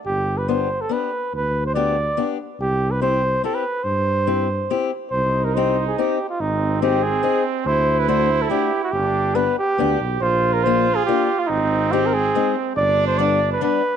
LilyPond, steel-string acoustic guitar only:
\new Staff \with { instrumentName = "Steel-string acoustic guitar" } { \time 3/4 \key c \major \tempo 4 = 142 r4 <b d' g'>8 r8 <b d' g'>8 r8 | r4 <b d' g'>8 r8 <b d' g'>8 r8 | r4 <c' e' g'>8 r8 <c' e' g'>8 r8 | r4 <c' e' g'>8 r8 <c' e' g'>8 r8 |
\key c \minor r4 <c' ees' g'>8 r8 <c' ees' g'>8 r8 | r4 <c' ees' aes'>8 r8 <c' ees' aes'>8 r8 | r4 <a d' fis'>8 r8 <a d' fis'>8 r8 | r4 <b d' g'>8 r8 <b d' g'>8 r8 |
r4 <bes d' f'>8 r8 <bes d' f'>8 r8 | r4 <aes c' ees'>8 r8 <aes c' ees'>8 r8 | r4 <g b d'>8 r8 <g b d'>8 r8 | }